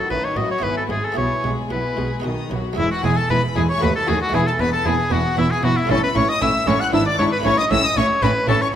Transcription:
Already playing: F#3 B3 D#4 F#4 B5
0.10 A1 A2 D#3 D#4 B4 A5
0.24 C#5
0.36 A1 A2 F#3 F#4 D#5 B5
0.51 C#5
0.59 B3 E4 G#4
0.63 G#1 G#2 B3 E4 B4 G#5
0.77 A4
0.89 G#1 G#2 G#3 G#4 B5
1.05 A4
1.12 B3 E4 G#4
1.17 B1 B2 B3 E4 C#5 G#5
1.44 B1 B2 G#3 G#4 B5
1.71 B1 B2 B3 E4 B4 G#5
1.97 B1 B2 G#3 G#4 B5
2.20 B3 D#4 F#4
2.24 B1 B2 D#3 D#4 D#6
2.51 B1 B2 F#3 F#4 B5
2.73 G#3 B3 E4
2.77 E1 E2 G#3 E4 E5
2.91 F#4 F#5
3.04 E1 E2 G#3 E4 G#4 G#5
3.17 A4 A5
3.30 E1 E2 G#3 E4 B4 B5
3.56 E1 E2 G#3 E4 G#4 G#5
3.69 C#5 C#6
3.78 A3 B3 F#4
3.82 D#2 A3 F#4 B4 B5
3.95 A4 A5
4.08 D#2 A3 F#4 G#4 G#5
4.21 F#4 F#5
4.29 G#3 B3 E4
4.34 E1 E2 B3 E4 G#4 G#5
4.47 A4 A5
4.59 E1 E2 B3 E4 B4 B5
4.73 A4 A5
4.86 E1 E2 B3 E4 G#4 G#5
5.11 E1 E2 B3 E4 F#4 F#5
5.37 E1 E2 B3 E4 E5
5.51 G#4 G#5
5.63 E1 E2 B3 E4 F#4 F#5
5.77 E4 E5
5.85 A3 C#4 E4
5.89 A1 A2 C#4 E4 A4 A5
6.03 B4 B5
6.15 A1 A2 C#4 E4 C#5 C#6
6.29 D#5 D#6
6.41 A1 A2 C#4 E4 E5 E6
6.67 A1 A2 C#4 E4 C#5 C#6
6.81 F#5 F#6
6.89 G#1 B3 D4 E4
6.93 G#2 E4 E5 E6
7.06 D5 D6
7.19 G#1 G#2 D4 E4 C#5 C#6
7.32 B4 B5
7.40 A3 C#4 E4
7.45 A1 A2 C#4 E4 C#5 C#6
7.58 D#5 D#6
7.70 A1 A2 C#4 E4 E5 E6
7.84 D#5 D#6
7.96 A1 A2 C#4 E4 C#5 C#6
8.22 A1 A2 C#4 E4 B4 B5
8.48 A1 A2 C#4 E4 A4 A5
8.61 C#5 C#6

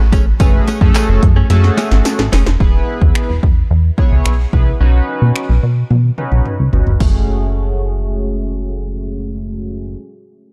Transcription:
Already playing: A1
0.12 G1 A3 C#4 G#4, kick, closed hi-hat, tambourine
0.26 muted clean electric guitar stroke
0.40 F#1 A3 C#4 F#4 G#4 B4, kick, closed hi-hat, tambourine
0.54 muted clean electric guitar stroke
0.67 A3 C#4 G#4, closed hi-hat, tambourine
0.81 F#2 A3 C#4 F#4 G#4 A4, kick
0.95 A3 C#4 G#4, clap, closed hi-hat, tambourine
1.09 F#1, muted clean electric guitar stroke
1.22 F#2, muted clean electric guitar stroke, kick, closed hi-hat
1.36 A3 C#4 G#4
1.50 F#2 A3 C#4 F#4 G#4 A4, muted clean electric guitar stroke, snare, closed hi-hat, tambourine
1.64 muted clean electric guitar stroke, snare
1.77 A3 C#4 G#4, snare, closed hi-hat, tambourine
1.91 G#1, muted clean electric guitar stroke, snare
2.05 snare, closed hi-hat, tambourine
2.19 A1, muted clean electric guitar stroke, snare
2.32 F#1 A3 C#4 G#4, snare, open hi-hat, tambourine
2.46 F1, muted clean electric guitar stroke, snare
2.60 E1 B3 E4 G#4 B4, kick
3.02 E2, kick
3.15 finger snap
3.29 E1
3.43 E2, kick
3.71 E2
3.98 B3 E4 G#4 C#5, kick
4.12 C#2
4.26 B1, finger snap
4.53 C2 B3 E4 G#4 B4, kick
4.80 B1 C#4 D#4 F#4 B4
5.22 B2
5.36 finger snap
5.49 B1
5.63 B2
5.91 B2, high tom
6.18 C#4 D#4 F#4 B4, mid tom
6.32 B1, mid tom
6.46 mid tom
6.59 C#2
6.73 G#1 C#4 D#4 F#4 B4, floor tom
6.87 G1, floor tom
7.00 F#1 A3 C#4 F#4 G#4, kick, crash

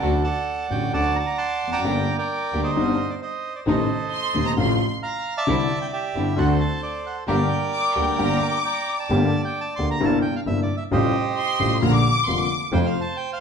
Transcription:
Already playing: A4 D5 F#5
0.01 D2 D3 F#3 A3 D4 F#4
0.24 D5 F#5 A5
0.69 A1 A2 D3 F#3 A3 D4 F#4 G5
0.92 D2 D3 F#3 A3 D4 F#4 D5 F#5 A5
1.15 A#5
1.20 A5
1.26 A#5
1.38 F#5 A5 C6
1.62 F1
1.67 E2
1.72 F2 D5 G5 A#5
1.79 F#2
1.84 G1 G2 D3 G3 A#3 D4 G4
2.18 A#4 D5 G5
2.52 D2 D3 G3 A#3 D4 G4
2.63 C5 D#5
2.75 G1 G2 D3 G3 C4 D4 D#4
3.10 D5
3.22 C5 D#5
3.55 D5
3.66 A1 A2 C3 D#3 A3 C4 D#4 A4 C5 D#5
4.12 C6
4.34 D#1 D#2 C3 D#3 A3 C4 D#4
4.46 A#5
4.56 A1 A2 C3 F3 A3 C4 F4 C6
5.03 F5 A#5
5.37 D5 E5 A5
5.47 C2 C3 D3 G3 C4 D4 E4
5.82 G5
5.93 G4 E5
6.15 G1 G2 D3 G3 C4 D4 E4
6.37 D2 D3 A3 C4 D4 F#4 A4 C5 F#5
6.60 A5
6.83 D5
7.06 F#5
7.28 G1 G2 D3 G3 A#3 D4 G4 A#4 D5 G5
7.73 D6
7.95 D2 D3 G3 A#3 D4 G4 G5
8.18 G1 G2 D3 G3 A#3 D4 G4 A#5
8.41 D6
8.65 D5 G5 A#5
8.99 D5 A5
9.10 G1 G2 D3 A3 A#3 G4
9.45 G5
9.61 A5
9.76 D2 D3 A3 A#3 G4 C6
9.91 A#5
10.00 G1 G2 C3 G3 A#3 E4
10.05 A5
10.22 G5
10.36 F5
10.46 G1 G2 C3 G3 A#3 E4 E5
10.62 D5
10.77 E5
10.91 A1 A2 C3 G3 A3 F4 G4 C5 D#5
11.37 C6
11.59 A1 A2 C3 G3 A3 F4
11.82 A#1 A#2 D3 F3 A#3 F4 A#5
11.92 D6
12.27 F1 F2 D3 F3 A#3 F4 C6
12.38 D6
12.72 F2 C3 F3 A3 F4 C5 G5
12.86 F5
13.01 A5
13.17 G5
13.33 F5

